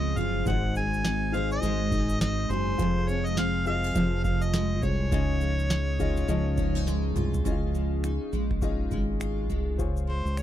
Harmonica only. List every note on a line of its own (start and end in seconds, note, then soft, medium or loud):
0.00 0.19 D#5 loud
0.18 0.46 F5 loud
0.47 0.74 F#5 loud
0.77 1.37 G#5 loud
1.35 1.51 F5 loud
1.52 2.17 D#5 loud
2.22 2.52 D#5 loud
2.50 3.10 C5 loud
3.09 3.27 C#5 medium
3.26 3.37 D#5 medium
3.38 3.65 F5 loud
3.67 4.21 F5 loud
4.24 4.44 F5 medium
4.42 4.84 D#5 medium
4.83 6.87 C#5 loud
10.09 10.40 C5 medium
10.39 10.43 C#5 medium